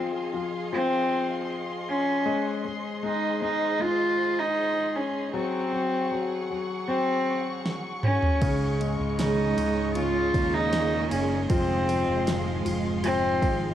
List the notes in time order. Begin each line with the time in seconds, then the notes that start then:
Already playing: F3 C4 G#4 D#5 F5 C6
0.34 F3
0.73 F3 C4
1.89 C#4
2.25 G#3 G#4 C5
2.65 G#3
3.03 G#3 D#4
3.42 G#3 D#4
3.80 G#3 F4
4.39 D#4
4.96 C#4
5.34 F#3 C4 F#5 C#6
5.72 F#3
6.11 F#3
6.50 F#3
6.88 F#3 C4
7.66 snare
8.03 C#4, mid tom
8.22 floor tom
8.42 C#2 G#2 C#3 G#3 C#4 D#4 G#4 C#5 D#5, kick, ride
8.81 G#3, ride
9.00 C#2
9.19 C#3 G#3 C#4 D#4 G#4, snare, ride
9.56 C#2 G#3 C#4 D#4, ride
9.76 C#4 D#4 G#4
9.95 C#3 F4, ride
10.14 C#4 D#4 G#4
10.33 D#2 A#2 G#3 A#3 C#4 D#4 G#4, kick, ride
10.54 D#4
10.72 C#3 G#4, snare, ride
10.91 C#4 D#4 G#4
11.11 F#1 G#3 C#4 D#4 G#4, ride
11.30 C#4 D#4 G#4
11.49 F1 F2 G#2 C3 D#3 F3 G#3 C4 F4 F5 C6, kick, ride
11.89 F3, ride
12.08 F1
12.26 F2 C3 D#3 F3 G#3 C4 F4, snare, ride
12.65 F1 D#3 F3 G#3 C4 F4, ride
12.84 D#3 G#3 C4 F4
13.03 F3 C4, ride
13.22 D#3 G#3 C4 F4
13.41 G#1 D#3 G#3 C4 F4, kick, ride